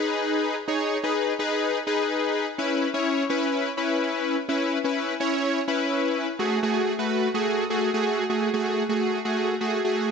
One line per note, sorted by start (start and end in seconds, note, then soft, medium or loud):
0.00 0.55 D#4 medium
0.00 0.55 G#4 medium
0.00 0.55 B4 medium
0.68 0.97 D#4 medium
0.68 0.97 G#4 medium
0.68 0.98 C#5 medium
1.04 1.33 D#4 medium
1.04 1.33 G#4 medium
1.04 1.33 B4 medium
1.39 1.78 D#4 medium
1.39 1.79 G#4 medium
1.39 1.79 B4 loud
1.87 2.46 D#4 medium
1.87 2.46 G#4 medium
1.87 2.46 B4 medium
2.58 2.88 C#4 medium
2.58 2.88 E4 medium
2.58 2.88 B4 medium
2.94 3.23 C#4 medium
2.94 3.24 E4 medium
2.94 3.24 C#5 medium
3.30 3.69 C#4 medium
3.30 3.69 E4 medium
3.30 3.69 B4 loud
3.77 4.36 C#4 medium
3.77 4.36 E4 medium
3.77 4.36 B4 medium
4.49 4.78 C#4 medium
4.49 4.78 E4 medium
4.49 4.78 B4 medium
4.84 5.14 C#4 medium
4.84 5.14 E4 medium
4.84 5.14 B4 medium
5.20 5.59 C#4 medium
5.20 5.60 E4 medium
5.20 5.60 C#5 loud
5.68 6.27 C#4 medium
5.68 6.27 E4 medium
5.68 6.27 B4 medium
6.39 6.59 A3 medium
6.39 6.59 F#4 medium
6.39 6.59 G#4 medium
6.63 6.92 A3 medium
6.63 6.93 F#4 medium
6.63 6.93 G#4 loud
6.99 7.28 A3 medium
6.99 7.28 F#4 medium
6.99 7.28 B4 medium
7.34 7.64 A3 medium
7.34 7.64 F#4 medium
7.34 7.64 G#4 loud
7.70 7.90 A3 medium
7.70 7.90 F#4 medium
7.70 7.90 G#4 medium
7.94 8.23 A3 medium
7.94 8.24 F#4 medium
7.94 8.24 G#4 loud
8.30 8.49 A3 medium
8.30 8.49 F#4 medium
8.30 8.50 G#4 medium
8.54 8.83 A3 medium
8.54 8.83 F#4 medium
8.54 8.83 G#4 loud
8.89 9.19 A3 medium
8.89 9.19 F#4 medium
8.89 9.19 G#4 medium
9.25 9.54 A3 medium
9.25 9.55 F#4 medium
9.25 9.55 G#4 loud
9.61 9.80 A3 medium
9.61 9.80 F#4 medium
9.61 9.81 G#4 loud
9.84 10.11 A3 medium
9.84 10.11 F#4 medium
9.84 10.11 G#4 medium